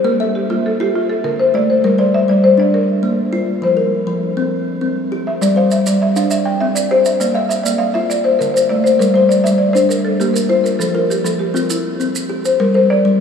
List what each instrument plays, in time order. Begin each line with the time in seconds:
0.04 kalimba A#3, marimba A#4
0.20 marimba A4, kalimba E5
0.35 marimba G4
0.50 kalimba A#3, marimba F4
0.66 marimba A4
0.80 kalimba F4, marimba G4
0.95 marimba F4
1.09 marimba A4
1.24 kalimba D3, marimba A#4
1.40 marimba C5
1.54 kalimba A3, marimba D5
1.70 marimba C5
1.84 kalimba G3, marimba A#4
1.98 kalimba C5, marimba D5
2.14 marimba E5
2.28 kalimba G3, marimba D5
2.44 marimba C5
2.58 kalimba D4, marimba D5
2.74 marimba A#4
3.03 kalimba A#3
3.33 kalimba F4
3.62 kalimba F3, marimba C5
3.77 kalimba A#4
4.07 kalimba F3
4.37 kalimba C4
4.81 kalimba C4
5.12 kalimba G4
5.27 marimba E5
5.41 kalimba G3, marimba D5, maracas
5.56 kalimba C5, marimba F5
5.71 marimba E5, maracas
5.86 kalimba G3, marimba D5, maracas
6.02 marimba E5
6.16 kalimba D4, marimba F5, maracas
6.31 marimba E5, maracas
6.46 marimba G5
6.61 kalimba C4, marimba E5
6.75 marimba D5, maracas
6.91 kalimba G4, marimba C5
7.05 marimba E5, maracas
7.20 kalimba A#3, marimba D5, maracas
7.34 kalimba E5, marimba F5
7.49 marimba E5, maracas
7.64 kalimba A#3, marimba D5, maracas
7.78 marimba F5
7.94 kalimba F4, marimba E5
8.10 marimba D5, maracas
8.24 marimba C5
8.39 kalimba D3, marimba A#4, maracas
8.54 marimba C5, maracas
8.69 kalimba A3, marimba D5
8.84 marimba C5, maracas
8.99 kalimba G3, marimba A#4, maracas
9.14 marimba C5, kalimba C5
9.29 marimba D5, maracas
9.44 kalimba G3, marimba E5, maracas
9.58 marimba D5
9.73 kalimba D4, marimba C5, maracas
9.89 marimba A#4, maracas
10.05 marimba A4
10.20 kalimba A#3, marimba G4, maracas
10.34 marimba A#4, maracas
10.49 kalimba F4, marimba C5
10.64 marimba A#4, maracas
10.79 kalimba F3, marimba A4, maracas
10.95 marimba F4, kalimba A#4
11.10 marimba G4, maracas
11.24 kalimba F3, marimba A4, maracas
11.39 marimba G4
11.54 kalimba C4, marimba F4, maracas
11.70 marimba E4, maracas
12.00 kalimba C4, maracas
12.15 maracas
12.30 kalimba G4
12.45 marimba C5, maracas
12.60 kalimba G3, marimba A#4
12.74 kalimba A#4, marimba C5
12.90 marimba D5
13.05 kalimba G3